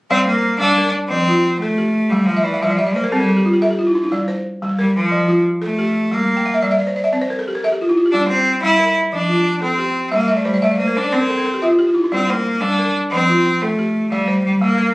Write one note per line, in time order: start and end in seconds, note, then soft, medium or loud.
0.11 0.44 G3 medium
0.11 0.26 C4 medium
0.11 0.61 D5 medium
0.28 0.59 A#3 medium
0.28 0.78 C5 medium
0.60 0.94 G3 medium
0.60 0.91 D4 medium
0.78 1.28 A#4 medium
1.09 1.44 F3 medium
1.09 1.57 C4 medium
1.28 1.78 F4 medium
1.60 2.11 A3 medium
1.60 1.95 A4 medium
1.78 2.28 G4 medium
2.09 2.28 G3 medium
2.09 2.45 G3 medium
2.26 2.45 F3 medium
2.26 2.44 F5 medium
2.37 2.52 E5 medium
2.43 2.63 E3 medium
2.43 2.60 D5 medium
2.54 2.69 F5 medium
2.61 2.79 F3 medium
2.61 2.95 G3 medium
2.61 2.78 E5 medium
2.70 2.85 D5 medium
2.77 2.96 G3 medium
2.77 2.94 E5 medium
2.87 3.02 D5 medium
2.94 3.10 A#3 medium
2.94 3.11 C5 medium
3.04 3.19 A#4 medium
3.11 3.58 G3 medium
3.11 3.45 C4 medium
3.11 3.27 A4 medium
3.20 3.35 A#4 medium
3.29 3.44 A4 medium
3.37 3.52 G4 medium
3.45 3.61 F4 medium
3.53 3.69 G4 medium
3.62 3.77 A4 medium
3.62 3.95 E5 medium
3.70 3.86 G4 medium
3.79 3.94 F4 medium
3.87 4.02 E4 medium
3.95 4.11 D4 medium
4.04 4.19 E4 medium
4.12 4.45 G3 medium
4.12 4.62 D5 medium
4.28 4.78 C5 medium
4.62 4.96 G3 medium
4.79 4.95 G3 medium
4.79 5.29 A#4 medium
4.96 5.42 F3 medium
5.12 5.45 F3 medium
5.28 5.78 F4 medium
5.62 6.15 A3 medium
5.62 5.95 A4 medium
5.79 6.29 G4 medium
6.11 6.45 G3 medium
6.11 6.63 A#3 medium
6.37 6.52 G5 medium
6.46 6.61 F5 medium
6.54 6.69 E5 medium
6.62 6.96 G3 medium
6.62 6.78 D5 medium
6.71 6.86 E5 medium
6.79 6.94 D5 medium
6.87 7.03 C5 medium
6.96 7.11 D5 medium
7.04 7.19 E5 medium
7.13 7.46 C4 medium
7.13 7.28 D5 medium
7.21 7.36 C5 medium
7.30 7.45 A#4 medium
7.39 7.54 A4 medium
7.48 7.62 G4 medium
7.55 7.70 A#4 medium
7.64 7.79 A4 medium
7.64 7.97 E5 medium
7.72 7.87 G4 medium
7.81 7.96 F4 medium
7.89 8.04 E4 medium
7.97 8.12 F4 medium
8.06 8.20 G4 medium
8.12 8.46 G3 medium
8.12 8.28 D4 medium
8.12 8.63 D5 medium
8.29 8.60 C4 medium
8.29 8.80 C5 medium
8.63 8.96 G3 medium
8.63 8.94 E4 loud
8.79 9.29 A#4 medium
9.13 9.46 F3 medium
9.13 9.59 D4 medium
9.29 9.79 F4 medium
9.62 10.09 C4 medium
9.62 9.95 A4 medium
9.79 10.29 G4 medium
10.12 10.45 G3 medium
10.12 10.33 A#3 medium
10.12 10.27 E5 medium
10.20 10.36 F5 medium
10.28 10.46 A3 medium
10.28 10.44 E5 medium
10.37 10.52 D5 medium
10.45 10.61 G3 medium
10.45 10.61 C5 medium
10.54 10.69 D5 medium
10.62 10.96 G3 medium
10.62 10.78 A3 medium
10.62 10.78 E5 medium
10.71 10.87 D5 medium
10.78 10.98 A#3 medium
10.78 10.95 C5 medium
10.88 11.03 A#4 medium
10.96 11.14 D4 medium
10.96 11.11 C5 medium
11.04 11.20 D5 medium
11.12 11.46 C4 medium
11.12 11.63 C4 medium
11.12 11.28 C5 medium
11.21 11.36 A#4 medium
11.30 11.45 A4 medium
11.38 11.53 A#4 medium
11.46 11.61 A4 medium
11.54 11.69 G4 medium
11.62 11.69 F4 medium
11.62 11.96 E5 medium
11.71 11.86 F4 medium
11.79 11.94 G4 medium
11.87 12.03 F4 medium
11.94 12.10 E4 medium
12.04 12.19 D4 medium
12.12 12.45 G3 medium
12.12 12.31 C4 medium
12.12 12.62 D5 medium
12.29 12.62 A#3 medium
12.29 12.79 C5 medium
12.61 12.95 G3 medium
12.61 12.95 D4 medium
12.79 13.29 A#4 medium
13.11 13.46 F3 medium
13.11 13.64 C4 medium
13.29 13.79 F4 medium
13.62 14.10 A3 medium
13.62 13.96 A4 medium
13.79 14.29 G4 medium
14.10 14.42 G3 medium
14.10 14.45 G3 medium
14.10 14.62 D5 medium
14.28 14.78 C5 medium
14.45 14.61 G3 medium
14.62 14.94 G3 medium
14.62 14.94 A#3 medium
14.78 14.94 A#4 medium